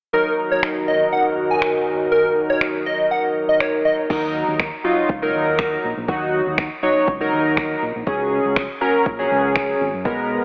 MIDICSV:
0, 0, Header, 1, 6, 480
1, 0, Start_track
1, 0, Key_signature, -6, "minor"
1, 0, Tempo, 495868
1, 131, Time_signature, 4, 2, 24, 8
1, 10111, End_track
2, 0, Start_track
2, 0, Title_t, "Digital synth lead"
2, 0, Program_c, 0, 84
2, 130, Note_on_c, 0, 70, 94
2, 320, Note_off_c, 0, 70, 0
2, 499, Note_on_c, 0, 73, 81
2, 587, Note_off_c, 0, 73, 0
2, 851, Note_on_c, 0, 75, 82
2, 1041, Note_off_c, 0, 75, 0
2, 1089, Note_on_c, 0, 78, 77
2, 1191, Note_off_c, 0, 78, 0
2, 1458, Note_on_c, 0, 80, 79
2, 1648, Note_off_c, 0, 80, 0
2, 2049, Note_on_c, 0, 70, 92
2, 2240, Note_off_c, 0, 70, 0
2, 2418, Note_on_c, 0, 73, 85
2, 2507, Note_off_c, 0, 73, 0
2, 2770, Note_on_c, 0, 75, 84
2, 2960, Note_off_c, 0, 75, 0
2, 3012, Note_on_c, 0, 78, 81
2, 3112, Note_off_c, 0, 78, 0
2, 3376, Note_on_c, 0, 75, 82
2, 3466, Note_off_c, 0, 75, 0
2, 3489, Note_on_c, 0, 73, 80
2, 3590, Note_off_c, 0, 73, 0
2, 3728, Note_on_c, 0, 75, 74
2, 3830, Note_off_c, 0, 75, 0
2, 10111, End_track
3, 0, Start_track
3, 0, Title_t, "Analog polysynth"
3, 0, Program_c, 1, 90
3, 126, Note_on_c, 1, 54, 58
3, 131, Note_on_c, 1, 63, 57
3, 136, Note_on_c, 1, 70, 65
3, 3930, Note_off_c, 1, 54, 0
3, 3932, Note_off_c, 1, 63, 0
3, 3935, Note_off_c, 1, 70, 0
3, 3967, Note_on_c, 1, 54, 81
3, 3969, Note_on_c, 1, 63, 74
3, 3972, Note_on_c, 1, 70, 89
3, 4505, Note_off_c, 1, 54, 0
3, 4506, Note_off_c, 1, 63, 0
3, 4507, Note_off_c, 1, 70, 0
3, 4687, Note_on_c, 1, 54, 89
3, 4689, Note_on_c, 1, 63, 86
3, 4692, Note_on_c, 1, 65, 100
3, 4957, Note_off_c, 1, 54, 0
3, 4958, Note_off_c, 1, 63, 0
3, 4959, Note_off_c, 1, 65, 0
3, 5055, Note_on_c, 1, 54, 92
3, 5057, Note_on_c, 1, 63, 85
3, 5060, Note_on_c, 1, 70, 106
3, 5672, Note_off_c, 1, 54, 0
3, 5674, Note_off_c, 1, 63, 0
3, 5675, Note_off_c, 1, 70, 0
3, 5886, Note_on_c, 1, 54, 86
3, 5889, Note_on_c, 1, 63, 76
3, 5891, Note_on_c, 1, 66, 92
3, 6425, Note_off_c, 1, 54, 0
3, 6426, Note_off_c, 1, 63, 0
3, 6427, Note_off_c, 1, 66, 0
3, 6607, Note_on_c, 1, 54, 91
3, 6610, Note_on_c, 1, 63, 83
3, 6612, Note_on_c, 1, 73, 102
3, 6877, Note_off_c, 1, 54, 0
3, 6879, Note_off_c, 1, 63, 0
3, 6880, Note_off_c, 1, 73, 0
3, 6975, Note_on_c, 1, 54, 97
3, 6977, Note_on_c, 1, 63, 86
3, 6980, Note_on_c, 1, 70, 104
3, 7592, Note_off_c, 1, 54, 0
3, 7593, Note_off_c, 1, 63, 0
3, 7595, Note_off_c, 1, 70, 0
3, 7807, Note_on_c, 1, 54, 83
3, 7810, Note_on_c, 1, 61, 77
3, 7812, Note_on_c, 1, 68, 94
3, 8345, Note_off_c, 1, 54, 0
3, 8346, Note_off_c, 1, 61, 0
3, 8347, Note_off_c, 1, 68, 0
3, 8527, Note_on_c, 1, 54, 91
3, 8529, Note_on_c, 1, 61, 84
3, 8531, Note_on_c, 1, 70, 105
3, 8797, Note_off_c, 1, 54, 0
3, 8798, Note_off_c, 1, 61, 0
3, 8799, Note_off_c, 1, 70, 0
3, 8894, Note_on_c, 1, 54, 94
3, 8897, Note_on_c, 1, 61, 89
3, 8900, Note_on_c, 1, 68, 104
3, 9512, Note_off_c, 1, 54, 0
3, 9514, Note_off_c, 1, 61, 0
3, 9515, Note_off_c, 1, 68, 0
3, 9728, Note_on_c, 1, 56, 85
3, 9730, Note_on_c, 1, 59, 77
3, 9733, Note_on_c, 1, 70, 91
3, 10111, Note_off_c, 1, 56, 0
3, 10111, Note_off_c, 1, 59, 0
3, 10111, Note_off_c, 1, 70, 0
3, 10111, End_track
4, 0, Start_track
4, 0, Title_t, "Analog synth pad"
4, 0, Program_c, 2, 89
4, 131, Note_on_c, 2, 70, 84
4, 132, Note_on_c, 2, 39, 74
4, 132, Note_on_c, 2, 66, 71
4, 133, Note_on_c, 2, 51, 69
4, 3933, Note_off_c, 2, 39, 0
4, 3933, Note_off_c, 2, 66, 0
4, 3933, Note_off_c, 2, 70, 0
4, 3934, Note_off_c, 2, 51, 0
4, 10111, End_track
5, 0, Start_track
5, 0, Title_t, "Fingered electric bass"
5, 0, Program_c, 3, 33
5, 3969, Note_on_c, 3, 39, 92
5, 4276, Note_off_c, 3, 39, 0
5, 4337, Note_on_c, 3, 39, 84
5, 4538, Note_off_c, 3, 39, 0
5, 4930, Note_on_c, 3, 37, 92
5, 5131, Note_off_c, 3, 37, 0
5, 5171, Note_on_c, 3, 39, 96
5, 5572, Note_off_c, 3, 39, 0
5, 5651, Note_on_c, 3, 34, 78
5, 5757, Note_off_c, 3, 34, 0
5, 5778, Note_on_c, 3, 34, 81
5, 5872, Note_off_c, 3, 34, 0
5, 5890, Note_on_c, 3, 39, 91
5, 6197, Note_off_c, 3, 39, 0
5, 6259, Note_on_c, 3, 39, 82
5, 6459, Note_off_c, 3, 39, 0
5, 6851, Note_on_c, 3, 37, 92
5, 7051, Note_off_c, 3, 37, 0
5, 7091, Note_on_c, 3, 39, 97
5, 7491, Note_off_c, 3, 39, 0
5, 7571, Note_on_c, 3, 34, 79
5, 7677, Note_off_c, 3, 34, 0
5, 7699, Note_on_c, 3, 34, 76
5, 7793, Note_off_c, 3, 34, 0
5, 7811, Note_on_c, 3, 37, 95
5, 8117, Note_off_c, 3, 37, 0
5, 8179, Note_on_c, 3, 37, 82
5, 8379, Note_off_c, 3, 37, 0
5, 8771, Note_on_c, 3, 34, 94
5, 8971, Note_off_c, 3, 34, 0
5, 9011, Note_on_c, 3, 37, 97
5, 9411, Note_off_c, 3, 37, 0
5, 9492, Note_on_c, 3, 32, 85
5, 9598, Note_off_c, 3, 32, 0
5, 9618, Note_on_c, 3, 42, 79
5, 9712, Note_off_c, 3, 42, 0
5, 9731, Note_on_c, 3, 35, 93
5, 10037, Note_off_c, 3, 35, 0
5, 10111, End_track
6, 0, Start_track
6, 0, Title_t, "Drums"
6, 610, Note_on_c, 9, 26, 88
6, 706, Note_off_c, 9, 26, 0
6, 1568, Note_on_c, 9, 26, 92
6, 1664, Note_off_c, 9, 26, 0
6, 2529, Note_on_c, 9, 26, 95
6, 2626, Note_off_c, 9, 26, 0
6, 3489, Note_on_c, 9, 26, 95
6, 3586, Note_off_c, 9, 26, 0
6, 3969, Note_on_c, 9, 36, 112
6, 3969, Note_on_c, 9, 49, 85
6, 4066, Note_off_c, 9, 36, 0
6, 4066, Note_off_c, 9, 49, 0
6, 4448, Note_on_c, 9, 26, 94
6, 4450, Note_on_c, 9, 36, 112
6, 4545, Note_off_c, 9, 26, 0
6, 4547, Note_off_c, 9, 36, 0
6, 4930, Note_on_c, 9, 36, 108
6, 5027, Note_off_c, 9, 36, 0
6, 5409, Note_on_c, 9, 26, 97
6, 5411, Note_on_c, 9, 36, 102
6, 5505, Note_off_c, 9, 26, 0
6, 5508, Note_off_c, 9, 36, 0
6, 5890, Note_on_c, 9, 36, 111
6, 5987, Note_off_c, 9, 36, 0
6, 6370, Note_on_c, 9, 26, 95
6, 6371, Note_on_c, 9, 36, 110
6, 6466, Note_off_c, 9, 26, 0
6, 6467, Note_off_c, 9, 36, 0
6, 6851, Note_on_c, 9, 36, 106
6, 6948, Note_off_c, 9, 36, 0
6, 7330, Note_on_c, 9, 26, 98
6, 7332, Note_on_c, 9, 36, 105
6, 7427, Note_off_c, 9, 26, 0
6, 7429, Note_off_c, 9, 36, 0
6, 7810, Note_on_c, 9, 36, 109
6, 7907, Note_off_c, 9, 36, 0
6, 8290, Note_on_c, 9, 26, 93
6, 8291, Note_on_c, 9, 36, 114
6, 8387, Note_off_c, 9, 26, 0
6, 8388, Note_off_c, 9, 36, 0
6, 8771, Note_on_c, 9, 36, 110
6, 8868, Note_off_c, 9, 36, 0
6, 9250, Note_on_c, 9, 26, 104
6, 9252, Note_on_c, 9, 36, 103
6, 9347, Note_off_c, 9, 26, 0
6, 9349, Note_off_c, 9, 36, 0
6, 9731, Note_on_c, 9, 36, 111
6, 9828, Note_off_c, 9, 36, 0
6, 10111, End_track
0, 0, End_of_file